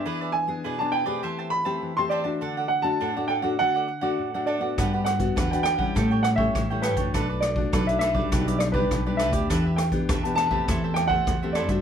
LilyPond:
<<
  \new Staff \with { instrumentName = "Grand piano" } { \time 4/4 \key g \major \tempo 4 = 102 e''8 gis''8. a''16 g''4 b''8. c'''16 d''8~ | d''8 fis''16 a''8. g''8 fis''4. d''8~ | d''8 fis''8. g''16 g''4 fis''16 e''8. b'8~ | b'8 d''8. e''16 e''4 d''16 b'8. e''8~ |
e''8 g''8. a''16 a''4 g''16 fis''8. d''8 | }
  \new Staff \with { instrumentName = "Cavaquinho" } { \time 4/4 \key g \major <e' gis' b' d''>16 <gis' b' d''>16 r8 <e' gis' b' d''>16 <gis' b' d''>16 <e' gis' b' d''>16 <gis' b' d''>16 <g' c'' e'' a''>16 <c'' e'' a''>16 r16 <c'' e'' a''>8 <c'' e'' a''>16 <g' c'' e'' a''>16 <c'' e'' a''>16 | <d' a' d'' fis''>16 <a' d'' fis''>16 r8 <d' a' d'' fis''>16 <a' d'' fis''>16 <d' a' d'' fis''>16 <a' d'' fis''>16 <d' a' d'' fis''>16 <a' d'' fis''>16 r16 <a' d'' fis''>8 <a' d'' fis''>16 <d' a' d'' fis''>16 <a' d'' fis''>16 | <d' g' b' fis''>16 <g' b' fis''>16 r8 <d' g' b' fis''>16 <g' b' fis''>16 <d' g' b' fis''>16 <g' b' fis''>16 <g' a' cis'' g''>16 <a' cis'' g''>16 r16 <a' cis'' g''>8 <a' cis'' g''>16 <g' a' cis'' g''>16 <a' cis'' g''>16 | <d' a' b' d''>16 <a' b' d''>16 r8 <d' a' b' d''>16 <a' b' d''>16 <d' a' b' d''>16 <a' b' d''>16 <d' g' b' d''>16 <g' b' d''>16 r16 <g' b' d''>8 <g' b' d''>16 <d' g' b' d''>16 <g' b' d''>16 |
<d' g' b' e''>16 <g' b' e''>16 r8 <d' g' b' e''>16 <g' b' e''>16 <d' g' b' e''>16 <g' b' e''>16 <e' a' c'' e''>16 <a' c'' e''>16 r16 <a' c'' e''>8 <a' c'' e''>16 <e' a' c'' e''>16 <a' c'' e''>16 | }
  \new Staff \with { instrumentName = "Nylon-string guitar" } { \time 4/4 \key g \major << { <b d' aes'>8. <b d' gis'>8 <b d' gis'>8 <a c' g'>4 <a c' g'>8 <a c' g'>8 <a d' fis'>16~ | <a d' fis'>8. <a d' fis'>8 <a d' fis'>8 <a d' fis'>16 <a d' fis'>8 r16 <a d' fis'>8 <a d' fis'>8 <b d' fis'>16~ | <b d' fis'>8. <b d' fis'>8 <b d' fis'>8 <g cis' e'>4 <g cis' e'>8 <g cis' e'>8 <a d' fis'>16~ | <a d' fis'>8. <a d' fis'>8 <a d' fis'>8 <g d' g'>4 <g d' g'>8 <g d' g'>8 <b d' g'>16~ |
<b d' g'>8. <b d' g'>8 <b d' g'>8 <a c' g'>4 <a c' g'>8 <a c' g'>8 <a c' fis'>16 | } \\ { e4 b,4 e4 e4 | d4 a,4 d4 a,4 | g4 d4 a,4 e4 | b,4 fis4 b,4 b,4 |
e4 b,4 e4 e4 | } >> }
  \new Staff \with { instrumentName = "Upright bass" } { \clef bass \time 4/4 \key g \major r1 | r1 | g,4 e,4 a,4 a,8. fis,16 | b,,4 b,,4 b,,4 b,,8. d,16 |
e,4 e,4 e,4 e,8. g,16 | }
  \new DrumStaff \with { instrumentName = "Drums" } \drummode { \time 4/4 r4 r4 r4 r4 | r4 r4 r4 r4 | <hh bd ss>8 <hh ss>16 <hh bd>16 <hh bd ss>16 hh16 <hh ss>16 bd16 <hh bd ss>8 <hh ss>16 bd16 <hh bd ss>8 <hh ss>16 <hh bd>16 | <hh bd ss>8 <hh ss>16 bd16 <hh bd ss>16 hh16 <hh ss>16 bd16 <hh bd ss>16 hh16 <hh ss>16 bd16 <hh bd ss>8 <hh ss>16 <hh bd>16 |
<hh bd ss>8 <hh ss>16 <hh bd>16 <hh bd ss>16 hh16 <hh ss>16 bd16 <hh bd ss>8 <hh ss>16 bd16 <hh bd ss>8 <hh ss>16 <hh bd>16 | }
>>